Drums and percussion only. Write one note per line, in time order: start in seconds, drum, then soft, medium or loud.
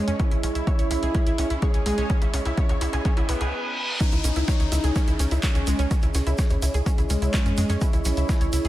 0.08 closed hi-hat medium
0.20 kick loud
0.20 closed hi-hat medium
0.20 mid tom medium
0.31 closed hi-hat medium
0.43 open hi-hat loud
0.43 mid tom medium
0.55 closed hi-hat medium
0.67 kick loud
0.67 closed hi-hat medium
0.67 mid tom medium
0.79 closed hi-hat medium
0.91 open hi-hat loud
0.91 mid tom medium
1.03 closed hi-hat medium
1.15 kick loud
1.15 closed hi-hat medium
1.15 mid tom medium
1.27 closed hi-hat medium
1.38 open hi-hat loud
1.38 mid tom medium
1.50 closed hi-hat medium
1.62 kick loud
1.62 closed hi-hat medium
1.62 mid tom medium
1.74 closed hi-hat medium
1.86 open hi-hat loud
1.86 mid tom medium
1.98 closed hi-hat medium
2.10 kick loud
2.10 closed hi-hat medium
2.10 mid tom loud
2.22 closed hi-hat medium
2.22 mid tom medium
2.34 open hi-hat loud
2.34 mid tom medium
2.45 closed hi-hat medium
2.45 mid tom medium
2.57 kick loud
2.57 closed hi-hat medium
2.57 mid tom loud
2.69 closed hi-hat medium
2.69 mid tom medium
2.81 open hi-hat loud
2.81 mid tom loud
2.93 closed hi-hat medium
2.93 mid tom loud
3.05 kick loud
3.05 closed hi-hat medium
3.05 mid tom loud
3.17 closed hi-hat medium
3.17 mid tom medium
3.29 open hi-hat loud
3.29 mid tom loud
3.41 closed hi-hat medium
3.41 mid tom medium
4.00 kick loud
4.00 closed hi-hat medium
4.00 ride medium
4.00 shaker medium
4.12 closed hi-hat medium
4.12 shaker soft
4.24 open hi-hat loud
4.24 ride medium
4.24 shaker loud
4.36 closed hi-hat medium
4.36 shaker soft
4.48 kick loud
4.48 snare loud
4.48 closed hi-hat medium
4.48 ride medium
4.48 shaker medium
4.60 closed hi-hat medium
4.60 shaker soft
4.72 open hi-hat loud
4.72 ride medium
4.72 shaker loud
4.84 closed hi-hat medium
4.84 shaker soft
4.96 kick loud
4.96 closed hi-hat medium
4.96 ride medium
4.96 shaker medium
5.07 closed hi-hat medium
5.07 shaker soft
5.19 open hi-hat loud
5.19 ride medium
5.19 shaker medium
5.31 closed hi-hat medium
5.31 shaker soft
5.43 kick loud
5.43 snare loud
5.43 clap loud
5.43 closed hi-hat medium
5.43 ride medium
5.43 shaker medium
5.55 closed hi-hat medium
5.55 shaker soft
5.67 open hi-hat loud
5.67 ride medium
5.67 shaker medium
5.79 closed hi-hat medium
5.79 shaker soft
5.91 kick loud
5.91 closed hi-hat medium
5.91 ride medium
5.91 shaker medium
6.02 closed hi-hat medium
6.02 shaker soft
6.14 snare soft
6.14 open hi-hat loud
6.14 ride medium
6.14 shaker medium
6.27 closed hi-hat medium
6.27 shaker soft
6.38 kick loud
6.38 snare loud
6.38 closed hi-hat medium
6.38 ride medium
6.38 shaker medium
6.50 closed hi-hat medium
6.50 shaker soft
6.62 open hi-hat loud
6.62 ride medium
6.62 shaker loud
6.74 closed hi-hat medium
6.74 shaker soft
6.86 kick loud
6.86 closed hi-hat medium
6.86 ride medium
6.86 shaker medium
6.98 closed hi-hat medium
6.98 shaker soft
7.10 open hi-hat loud
7.10 ride medium
7.10 shaker medium
7.22 closed hi-hat medium
7.22 shaker soft
7.33 kick loud
7.33 snare loud
7.33 clap loud
7.33 closed hi-hat medium
7.33 ride medium
7.33 shaker medium
7.46 closed hi-hat medium
7.46 shaker soft
7.57 open hi-hat loud
7.57 ride medium
7.57 shaker medium
7.69 snare soft
7.69 closed hi-hat medium
7.69 shaker soft
7.81 kick loud
7.81 closed hi-hat medium
7.81 ride medium
7.81 shaker medium
7.93 closed hi-hat medium
7.93 shaker soft
8.05 open hi-hat loud
8.05 ride medium
8.05 shaker loud
8.17 closed hi-hat medium
8.17 shaker soft
8.29 kick loud
8.29 snare loud
8.29 closed hi-hat medium
8.29 ride medium
8.29 shaker medium
8.41 closed hi-hat medium
8.41 shaker soft
8.53 open hi-hat loud
8.53 ride medium
8.53 shaker loud
8.65 closed hi-hat medium
8.65 shaker soft